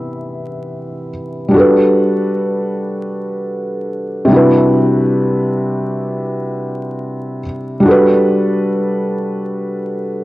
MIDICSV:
0, 0, Header, 1, 2, 480
1, 0, Start_track
1, 0, Key_signature, 1, "major"
1, 0, Tempo, 500000
1, 9831, End_track
2, 0, Start_track
2, 0, Title_t, "Felt piano"
2, 0, Program_c, 0, 0
2, 0, Control_c, 0, 64, 127
2, 0, Note_on_c, 0, 48, 51
2, 0, Note_on_c, 0, 52, 49
2, 0, Note_on_c, 0, 59, 58
2, 0, Note_on_c, 0, 64, 68
2, 0, Note_on_c, 0, 76, 87
2, 1051, Note_off_c, 0, 76, 0
2, 1060, Note_off_c, 0, 64, 0
2, 1425, Note_on_c, 0, 55, 68
2, 1449, Note_on_c, 0, 62, 69
2, 1478, Note_on_c, 0, 66, 75
2, 1485, Control_c, 0, 64, 0
2, 1488, Note_off_c, 0, 48, 0
2, 1490, Note_off_c, 0, 52, 0
2, 1494, Note_off_c, 0, 59, 0
2, 1502, Note_on_c, 0, 69, 67
2, 1532, Note_on_c, 0, 71, 85
2, 1675, Control_c, 0, 64, 127
2, 4063, Note_off_c, 0, 55, 0
2, 4076, Note_off_c, 0, 62, 0
2, 4079, Note_on_c, 0, 48, 86
2, 4090, Note_off_c, 0, 66, 0
2, 4102, Note_off_c, 0, 69, 0
2, 4102, Note_on_c, 0, 55, 68
2, 4117, Note_off_c, 0, 71, 0
2, 4123, Note_on_c, 0, 62, 72
2, 4138, Control_c, 0, 64, 0
2, 4147, Note_on_c, 0, 64, 77
2, 4164, Note_on_c, 0, 66, 73
2, 4185, Note_on_c, 0, 71, 89
2, 4300, Control_c, 0, 64, 127
2, 7096, Note_off_c, 0, 48, 0
2, 7107, Note_off_c, 0, 55, 0
2, 7118, Note_off_c, 0, 62, 0
2, 7130, Note_off_c, 0, 64, 0
2, 7138, Note_off_c, 0, 66, 0
2, 7149, Note_off_c, 0, 71, 0
2, 7488, Note_on_c, 0, 55, 76
2, 7513, Note_on_c, 0, 62, 73
2, 7540, Note_on_c, 0, 66, 71
2, 7551, Control_c, 0, 64, 0
2, 7564, Note_on_c, 0, 69, 73
2, 7592, Note_on_c, 0, 71, 98
2, 7720, Control_c, 0, 64, 127
2, 9831, Note_off_c, 0, 55, 0
2, 9831, Note_off_c, 0, 62, 0
2, 9831, Note_off_c, 0, 66, 0
2, 9831, Note_off_c, 0, 69, 0
2, 9831, Note_off_c, 0, 71, 0
2, 9831, End_track
0, 0, End_of_file